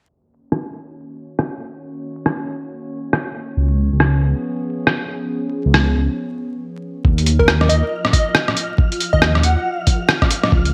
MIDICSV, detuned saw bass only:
0, 0, Header, 1, 2, 480
1, 0, Start_track
1, 0, Key_signature, -6, "minor"
1, 0, Tempo, 434783
1, 98, Time_signature, 4, 2, 24, 8
1, 11853, End_track
2, 0, Start_track
2, 0, Title_t, "Detuned saw bass"
2, 0, Program_c, 0, 39
2, 3941, Note_on_c, 0, 37, 92
2, 4307, Note_off_c, 0, 37, 0
2, 4331, Note_on_c, 0, 37, 97
2, 4649, Note_off_c, 0, 37, 0
2, 4659, Note_on_c, 0, 37, 81
2, 4793, Note_off_c, 0, 37, 0
2, 6245, Note_on_c, 0, 37, 98
2, 6567, Note_off_c, 0, 37, 0
2, 6584, Note_on_c, 0, 37, 83
2, 6716, Note_off_c, 0, 37, 0
2, 7782, Note_on_c, 0, 39, 96
2, 8148, Note_off_c, 0, 39, 0
2, 8168, Note_on_c, 0, 39, 97
2, 8488, Note_off_c, 0, 39, 0
2, 8509, Note_on_c, 0, 39, 80
2, 8639, Note_off_c, 0, 39, 0
2, 10085, Note_on_c, 0, 39, 102
2, 10407, Note_off_c, 0, 39, 0
2, 10420, Note_on_c, 0, 39, 79
2, 10554, Note_off_c, 0, 39, 0
2, 11618, Note_on_c, 0, 37, 96
2, 11853, Note_off_c, 0, 37, 0
2, 11853, End_track
0, 0, End_of_file